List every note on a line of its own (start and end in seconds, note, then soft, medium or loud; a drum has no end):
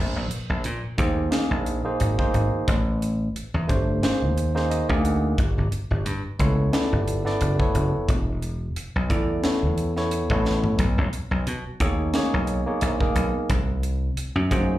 0.00 0.14 A#1 medium
0.16 0.29 A#1 medium
0.31 muted slap bass stroke soft
0.31 closed hi-hat medium
0.49 0.63 A#1 medium
0.64 0.82 A#2 medium
0.64 closed hi-hat medium
0.84 muted slap bass stroke soft
0.97 1.28 D#2 medium
0.97 1.30 A#3 medium
0.97 1.30 D#4 medium
0.97 1.30 G#4 medium
0.97 1.31 C5 medium
0.97 kick medium
0.97 closed hi-hat medium
1.31 1.80 A#3 medium
1.31 1.81 D#4 medium
1.31 1.81 G#4 medium
1.31 1.81 A#4 medium
1.31 snare loud
1.31 closed hi-hat medium
1.51 1.81 A#1 medium
1.66 closed hi-hat medium
1.84 2.16 A#3 medium
1.84 2.16 D#4 medium
1.84 2.16 G#4 medium
1.84 2.17 C5 medium
2.00 2.17 G#1 medium
2.00 closed hi-hat medium
2.18 2.67 A#3 medium
2.18 2.68 D#4 medium
2.18 2.68 G#4 medium
2.18 2.68 C5 medium
2.18 kick medium
2.34 2.50 G#1 medium
2.34 closed hi-hat medium
2.68 3.28 A1 medium
2.68 kick loud
2.68 closed hi-hat medium
3.02 closed hi-hat medium
3.35 muted slap bass stroke soft
3.35 closed hi-hat medium
3.54 3.67 E2 medium
3.68 3.99 G1 medium
3.68 4.00 A3 medium
3.68 4.00 D4 medium
3.68 4.01 G4 medium
3.68 4.01 C5 medium
3.68 kick medium
3.68 closed hi-hat medium
4.03 4.51 A#3 medium
4.03 4.52 D#4 medium
4.03 4.52 G#4 medium
4.03 4.52 C5 medium
4.03 muted slap bass stroke soft
4.03 snare loud
4.03 closed hi-hat medium
4.22 4.82 D#2 medium
4.38 closed hi-hat medium
4.55 4.86 A#3 medium
4.55 4.86 D#4 medium
4.55 4.87 G#4 medium
4.55 4.87 C5 medium
4.55 snare soft
4.71 5.02 D#5 medium
4.71 closed hi-hat medium
4.89 5.32 D2 medium
4.89 5.38 A#3 medium
4.89 5.38 D#4 medium
4.89 5.38 G#4 medium
4.89 5.38 A#4 medium
4.89 kick medium
5.05 5.36 F#5 medium
5.05 closed hi-hat medium
5.38 5.55 G1 medium
5.38 kick loud
5.38 closed hi-hat medium
5.58 5.71 G1 medium
5.72 muted slap bass stroke soft
5.72 closed hi-hat medium
5.91 6.04 G1 medium
6.05 6.22 G2 medium
6.05 closed hi-hat medium
6.25 muted slap bass stroke soft
6.39 6.69 C#2 medium
6.39 6.71 B3 medium
6.39 6.71 E4 medium
6.39 6.71 A4 medium
6.39 6.71 C#5 medium
6.39 kick medium
6.39 closed hi-hat medium
6.73 7.22 B3 medium
6.73 7.22 E4 medium
6.73 7.22 A4 medium
6.73 7.22 D5 medium
6.73 snare loud
6.73 closed hi-hat medium
6.92 7.22 G1 medium
7.08 closed hi-hat medium
7.25 7.57 B3 medium
7.25 7.57 E4 medium
7.25 7.57 A4 medium
7.25 7.57 D5 medium
7.25 snare soft
7.41 7.57 F#1 medium
7.41 closed hi-hat medium
7.59 8.08 B3 medium
7.59 8.08 E4 medium
7.59 8.08 A4 medium
7.59 8.09 C#5 medium
7.59 kick medium
7.75 7.91 F#1 medium
7.75 closed hi-hat medium
8.09 8.68 E1 medium
8.09 kick loud
8.09 closed hi-hat medium
8.42 closed hi-hat medium
8.76 muted slap bass stroke soft
8.76 closed hi-hat medium
8.96 9.09 B1 medium
9.09 9.40 E2 medium
9.09 9.41 B3 medium
9.09 9.42 E4 medium
9.09 9.42 A4 medium
9.09 9.42 D5 medium
9.09 kick medium
9.09 closed hi-hat medium
9.44 9.92 B3 medium
9.44 9.92 E4 medium
9.44 9.93 A4 medium
9.44 9.93 C#5 medium
9.44 muted slap bass stroke soft
9.44 snare loud
9.44 closed hi-hat medium
9.63 10.22 E2 medium
9.78 closed hi-hat medium
9.96 10.28 B3 medium
9.96 10.28 E4 medium
9.96 10.28 A4 medium
9.96 10.28 C#5 medium
9.96 snare soft
10.11 closed hi-hat medium
10.30 10.73 A1 medium
10.30 10.79 B3 medium
10.30 10.80 E4 medium
10.30 10.80 A4 medium
10.30 10.80 C#5 medium
10.30 kick medium
10.45 snare soft
10.64 floor tom medium
10.79 10.96 B1 medium
10.79 kick medium
10.79 closed hi-hat medium
10.98 11.11 B1 medium
11.13 muted slap bass stroke soft
11.13 closed hi-hat soft
11.31 11.45 B1 medium
11.47 11.63 B2 medium
11.47 closed hi-hat medium
11.66 muted slap bass stroke soft
11.80 12.10 D#2 medium
11.80 12.13 A#3 medium
11.80 12.13 D#4 medium
11.80 12.13 G#4 medium
11.80 12.13 C#5 medium
11.80 kick medium
11.80 closed hi-hat medium
12.14 12.63 A#3 medium
12.14 12.63 D#4 medium
12.14 12.63 G#4 medium
12.14 12.64 C#5 medium
12.14 snare medium
12.14 closed hi-hat medium
12.34 12.63 B1 medium
12.47 closed hi-hat medium
12.66 12.98 A#3 medium
12.66 12.98 D#4 medium
12.66 12.98 G#4 medium
12.66 12.98 C#5 medium
12.81 12.98 A#1 medium
12.81 closed hi-hat medium
13.00 13.49 A#3 medium
13.00 13.50 D#4 medium
13.00 13.50 G#4 medium
13.00 13.50 A#4 medium
13.00 kick medium
13.15 13.32 B1 medium
13.15 closed hi-hat medium
13.50 14.09 C2 medium
13.50 kick loud
13.50 closed hi-hat medium
13.83 closed hi-hat medium
14.17 muted slap bass stroke soft
14.17 closed hi-hat medium
14.35 14.49 F#2 medium
14.50 14.78 F#2 medium
14.50 14.78 A#3 medium
14.50 14.78 D#4 medium
14.50 14.78 G#4 medium
14.50 14.78 C5 medium
14.50 kick medium
14.50 closed hi-hat medium